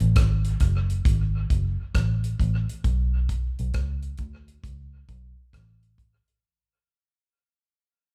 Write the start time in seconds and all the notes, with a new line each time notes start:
0.00 A1, closed hi-hat
0.16 G#1, kick, cross-stick, closed hi-hat
0.45 closed hi-hat
0.60 F#1, kick, cross-stick, closed hi-hat
0.90 closed hi-hat
1.05 G#1, kick, closed hi-hat
1.50 F#1, kick, closed hi-hat
1.95 A1, kick, cross-stick, closed hi-hat
2.24 closed hi-hat
2.40 A1, kick, closed hi-hat
2.69 closed hi-hat
2.84 B1, kick, closed hi-hat
3.29 kick, closed hi-hat
3.59 B1, closed hi-hat
3.74 C#2, kick, cross-stick, closed hi-hat
4.03 closed hi-hat
4.18 D2, kick, closed hi-hat
4.48 closed hi-hat
4.64 C#2, kick, closed hi-hat
5.09 B1, kick, closed hi-hat
5.53 A1, kick, cross-stick, closed hi-hat
5.83 closed hi-hat
5.98 kick, closed hi-hat
6.28 closed hi-hat